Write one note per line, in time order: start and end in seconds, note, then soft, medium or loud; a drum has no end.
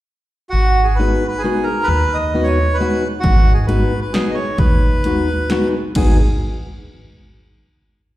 0.50 1.12 G#1 medium
0.50 0.87 F#4 medium
0.84 0.97 G#4 medium
0.96 1.22 G#3 medium
0.96 1.22 B3 medium
0.96 1.22 D#4 soft
0.96 1.27 B4 medium
1.00 1.22 F#4 medium
1.28 1.42 B4 medium
1.38 1.65 G#4 medium
1.44 1.67 G#3 medium
1.44 1.67 B3 medium
1.44 1.67 D#4 soft
1.44 1.68 F#4 medium
1.63 1.88 A#4 medium
1.83 2.17 B4 loud
1.88 2.47 D#2 medium
2.14 2.48 D#5 medium
2.34 2.57 G#3 soft
2.34 2.57 B3 medium
2.34 2.57 D#4 soft
2.34 2.57 F#4 medium
2.43 2.77 C#5 medium
2.74 3.08 B4 medium
2.80 3.02 G#3 medium
2.80 3.03 B3 medium
2.80 3.03 D#4 medium
2.80 3.03 F#4 medium
3.20 3.82 G#1 medium
3.20 3.53 F#4 loud
3.20 kick medium
3.20 closed hi-hat soft
3.54 3.66 G#4 medium
3.67 3.91 G#3 medium
3.67 3.91 B3 medium
3.67 3.91 D#4 soft
3.67 3.92 F#4 medium
3.67 4.00 B4 medium
3.67 closed hi-hat soft
4.01 4.13 B4 medium
4.13 4.37 G#3 medium
4.13 4.37 B3 medium
4.13 4.37 D#4 medium
4.13 4.37 F#4 medium
4.13 4.31 G#4 medium
4.13 snare medium
4.13 closed hi-hat soft
4.30 4.36 D#5 medium
4.34 4.58 C#5 medium
4.58 5.17 D#2 medium
4.58 5.69 B4 medium
4.58 kick medium
4.58 closed hi-hat soft
5.04 5.27 G#3 medium
5.04 5.28 B3 soft
5.04 5.28 D#4 soft
5.04 5.28 F#4 medium
5.04 closed hi-hat soft
5.50 5.73 G#3 medium
5.50 5.73 B3 medium
5.50 5.73 D#4 medium
5.50 5.73 F#4 medium
5.50 snare medium
5.50 closed hi-hat soft
5.95 6.16 G#1 medium
5.95 6.17 G#3 medium
5.95 6.17 B3 medium
5.95 6.17 D#4 soft
5.95 6.17 F#4 medium
5.95 6.17 G#4 medium
5.95 kick medium
5.95 crash medium